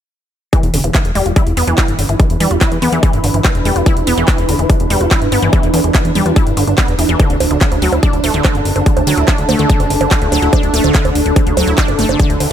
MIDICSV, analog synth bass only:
0, 0, Header, 1, 2, 480
1, 0, Start_track
1, 0, Tempo, 416667
1, 609, Time_signature, 4, 2, 24, 8
1, 14429, End_track
2, 0, Start_track
2, 0, Title_t, "Analog synth bass"
2, 0, Program_c, 0, 38
2, 729, Note_on_c, 0, 28, 89
2, 805, Note_off_c, 0, 28, 0
2, 849, Note_on_c, 0, 28, 102
2, 925, Note_off_c, 0, 28, 0
2, 969, Note_on_c, 0, 28, 91
2, 1045, Note_off_c, 0, 28, 0
2, 1209, Note_on_c, 0, 28, 89
2, 1285, Note_off_c, 0, 28, 0
2, 1330, Note_on_c, 0, 28, 100
2, 1406, Note_off_c, 0, 28, 0
2, 1449, Note_on_c, 0, 28, 98
2, 1525, Note_off_c, 0, 28, 0
2, 1690, Note_on_c, 0, 28, 88
2, 1766, Note_off_c, 0, 28, 0
2, 1809, Note_on_c, 0, 28, 97
2, 1885, Note_off_c, 0, 28, 0
2, 1929, Note_on_c, 0, 28, 91
2, 2006, Note_off_c, 0, 28, 0
2, 2169, Note_on_c, 0, 31, 88
2, 2245, Note_off_c, 0, 31, 0
2, 2289, Note_on_c, 0, 31, 99
2, 2365, Note_off_c, 0, 31, 0
2, 2409, Note_on_c, 0, 31, 95
2, 2485, Note_off_c, 0, 31, 0
2, 2649, Note_on_c, 0, 28, 89
2, 2725, Note_off_c, 0, 28, 0
2, 2769, Note_on_c, 0, 40, 102
2, 2845, Note_off_c, 0, 40, 0
2, 2889, Note_on_c, 0, 28, 90
2, 2965, Note_off_c, 0, 28, 0
2, 3129, Note_on_c, 0, 40, 84
2, 3205, Note_off_c, 0, 40, 0
2, 3249, Note_on_c, 0, 40, 98
2, 3325, Note_off_c, 0, 40, 0
2, 3369, Note_on_c, 0, 40, 95
2, 3445, Note_off_c, 0, 40, 0
2, 3609, Note_on_c, 0, 31, 89
2, 3685, Note_off_c, 0, 31, 0
2, 3729, Note_on_c, 0, 31, 95
2, 3805, Note_off_c, 0, 31, 0
2, 3849, Note_on_c, 0, 31, 90
2, 3925, Note_off_c, 0, 31, 0
2, 4089, Note_on_c, 0, 28, 87
2, 4165, Note_off_c, 0, 28, 0
2, 4209, Note_on_c, 0, 28, 100
2, 4285, Note_off_c, 0, 28, 0
2, 4329, Note_on_c, 0, 28, 93
2, 4405, Note_off_c, 0, 28, 0
2, 4569, Note_on_c, 0, 28, 87
2, 4645, Note_off_c, 0, 28, 0
2, 4689, Note_on_c, 0, 28, 104
2, 4765, Note_off_c, 0, 28, 0
2, 4809, Note_on_c, 0, 28, 93
2, 4885, Note_off_c, 0, 28, 0
2, 5049, Note_on_c, 0, 28, 86
2, 5125, Note_off_c, 0, 28, 0
2, 5169, Note_on_c, 0, 28, 99
2, 5245, Note_off_c, 0, 28, 0
2, 5289, Note_on_c, 0, 28, 94
2, 5365, Note_off_c, 0, 28, 0
2, 5529, Note_on_c, 0, 28, 88
2, 5606, Note_off_c, 0, 28, 0
2, 5649, Note_on_c, 0, 28, 100
2, 5725, Note_off_c, 0, 28, 0
2, 5769, Note_on_c, 0, 28, 88
2, 5845, Note_off_c, 0, 28, 0
2, 6009, Note_on_c, 0, 31, 86
2, 6085, Note_off_c, 0, 31, 0
2, 6130, Note_on_c, 0, 31, 97
2, 6206, Note_off_c, 0, 31, 0
2, 6249, Note_on_c, 0, 31, 95
2, 6326, Note_off_c, 0, 31, 0
2, 6489, Note_on_c, 0, 28, 91
2, 6565, Note_off_c, 0, 28, 0
2, 6609, Note_on_c, 0, 40, 104
2, 6685, Note_off_c, 0, 40, 0
2, 6729, Note_on_c, 0, 28, 89
2, 6805, Note_off_c, 0, 28, 0
2, 6969, Note_on_c, 0, 40, 86
2, 7045, Note_off_c, 0, 40, 0
2, 7089, Note_on_c, 0, 40, 99
2, 7165, Note_off_c, 0, 40, 0
2, 7209, Note_on_c, 0, 40, 93
2, 7285, Note_off_c, 0, 40, 0
2, 7449, Note_on_c, 0, 31, 85
2, 7525, Note_off_c, 0, 31, 0
2, 7569, Note_on_c, 0, 31, 98
2, 7645, Note_off_c, 0, 31, 0
2, 7689, Note_on_c, 0, 31, 90
2, 7765, Note_off_c, 0, 31, 0
2, 7929, Note_on_c, 0, 28, 88
2, 8005, Note_off_c, 0, 28, 0
2, 8049, Note_on_c, 0, 28, 98
2, 8125, Note_off_c, 0, 28, 0
2, 8170, Note_on_c, 0, 28, 95
2, 8246, Note_off_c, 0, 28, 0
2, 8410, Note_on_c, 0, 26, 85
2, 8486, Note_off_c, 0, 26, 0
2, 8530, Note_on_c, 0, 26, 101
2, 8606, Note_off_c, 0, 26, 0
2, 8650, Note_on_c, 0, 26, 91
2, 8726, Note_off_c, 0, 26, 0
2, 8890, Note_on_c, 0, 26, 86
2, 8966, Note_off_c, 0, 26, 0
2, 9009, Note_on_c, 0, 26, 96
2, 9085, Note_off_c, 0, 26, 0
2, 9130, Note_on_c, 0, 26, 93
2, 9206, Note_off_c, 0, 26, 0
2, 9370, Note_on_c, 0, 26, 88
2, 9445, Note_off_c, 0, 26, 0
2, 9489, Note_on_c, 0, 26, 98
2, 9566, Note_off_c, 0, 26, 0
2, 9609, Note_on_c, 0, 26, 89
2, 9685, Note_off_c, 0, 26, 0
2, 9849, Note_on_c, 0, 30, 89
2, 9926, Note_off_c, 0, 30, 0
2, 9969, Note_on_c, 0, 30, 98
2, 10045, Note_off_c, 0, 30, 0
2, 10089, Note_on_c, 0, 30, 95
2, 10165, Note_off_c, 0, 30, 0
2, 10329, Note_on_c, 0, 26, 86
2, 10405, Note_off_c, 0, 26, 0
2, 10449, Note_on_c, 0, 38, 101
2, 10525, Note_off_c, 0, 38, 0
2, 10569, Note_on_c, 0, 26, 94
2, 10645, Note_off_c, 0, 26, 0
2, 10809, Note_on_c, 0, 38, 86
2, 10885, Note_off_c, 0, 38, 0
2, 10929, Note_on_c, 0, 38, 98
2, 11005, Note_off_c, 0, 38, 0
2, 11049, Note_on_c, 0, 38, 96
2, 11125, Note_off_c, 0, 38, 0
2, 11289, Note_on_c, 0, 30, 88
2, 11365, Note_off_c, 0, 30, 0
2, 11409, Note_on_c, 0, 30, 101
2, 11485, Note_off_c, 0, 30, 0
2, 11529, Note_on_c, 0, 30, 91
2, 11605, Note_off_c, 0, 30, 0
2, 11769, Note_on_c, 0, 26, 89
2, 11845, Note_off_c, 0, 26, 0
2, 11889, Note_on_c, 0, 26, 95
2, 11965, Note_off_c, 0, 26, 0
2, 12009, Note_on_c, 0, 26, 97
2, 12085, Note_off_c, 0, 26, 0
2, 12248, Note_on_c, 0, 26, 87
2, 12325, Note_off_c, 0, 26, 0
2, 12369, Note_on_c, 0, 26, 102
2, 12445, Note_off_c, 0, 26, 0
2, 12489, Note_on_c, 0, 26, 92
2, 12565, Note_off_c, 0, 26, 0
2, 12729, Note_on_c, 0, 26, 90
2, 12805, Note_off_c, 0, 26, 0
2, 12849, Note_on_c, 0, 26, 98
2, 12926, Note_off_c, 0, 26, 0
2, 12969, Note_on_c, 0, 26, 96
2, 13045, Note_off_c, 0, 26, 0
2, 13209, Note_on_c, 0, 26, 88
2, 13285, Note_off_c, 0, 26, 0
2, 13329, Note_on_c, 0, 26, 99
2, 13405, Note_off_c, 0, 26, 0
2, 13449, Note_on_c, 0, 26, 90
2, 13525, Note_off_c, 0, 26, 0
2, 13689, Note_on_c, 0, 30, 91
2, 13765, Note_off_c, 0, 30, 0
2, 13809, Note_on_c, 0, 30, 100
2, 13885, Note_off_c, 0, 30, 0
2, 13929, Note_on_c, 0, 30, 96
2, 14005, Note_off_c, 0, 30, 0
2, 14169, Note_on_c, 0, 26, 90
2, 14245, Note_off_c, 0, 26, 0
2, 14289, Note_on_c, 0, 38, 102
2, 14365, Note_off_c, 0, 38, 0
2, 14429, End_track
0, 0, End_of_file